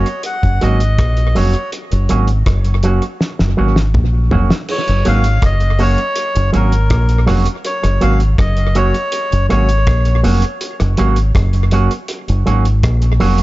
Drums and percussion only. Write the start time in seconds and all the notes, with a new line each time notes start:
0.06 closed hi-hat
0.23 closed hi-hat
0.43 kick, closed hi-hat
0.61 closed hi-hat
0.80 closed hi-hat
0.98 kick, cross-stick, closed hi-hat
1.17 closed hi-hat
1.36 open hi-hat
1.53 closed hi-hat
1.72 closed hi-hat
1.92 closed hi-hat
2.09 closed hi-hat
2.27 closed hi-hat
2.46 kick, cross-stick, closed hi-hat
2.64 closed hi-hat
2.83 closed hi-hat
3.02 closed hi-hat
3.21 snare
3.39 snare
3.76 snare
3.94 kick, mid tom
4.31 floor tom
4.50 snare
4.68 crash
4.88 closed hi-hat
5.05 closed hi-hat
5.24 closed hi-hat
5.42 kick, cross-stick, closed hi-hat
5.60 closed hi-hat
5.79 open hi-hat
5.98 closed hi-hat
6.16 closed hi-hat
6.36 closed hi-hat
6.54 closed hi-hat
6.72 closed hi-hat
6.90 kick, cross-stick, closed hi-hat
7.09 closed hi-hat
7.28 cross-stick, open hi-hat
7.46 closed hi-hat
7.65 closed hi-hat
7.84 cross-stick, closed hi-hat
8.01 closed hi-hat
8.20 closed hi-hat
8.38 kick, cross-stick, closed hi-hat
8.57 closed hi-hat
8.75 closed hi-hat
8.94 closed hi-hat
9.12 closed hi-hat
9.32 closed hi-hat
9.50 cross-stick, closed hi-hat
9.69 closed hi-hat
9.87 kick, cross-stick, closed hi-hat
10.05 closed hi-hat
10.24 open hi-hat
10.42 closed hi-hat
10.61 closed hi-hat
10.80 cross-stick, closed hi-hat
10.97 closed hi-hat
11.16 closed hi-hat
11.35 kick, cross-stick, closed hi-hat
11.53 closed hi-hat
11.71 closed hi-hat
11.91 closed hi-hat
12.08 closed hi-hat
12.28 closed hi-hat
12.47 closed hi-hat
12.65 closed hi-hat
12.83 kick, cross-stick, closed hi-hat
13.02 closed hi-hat
13.20 open hi-hat
13.38 closed hi-hat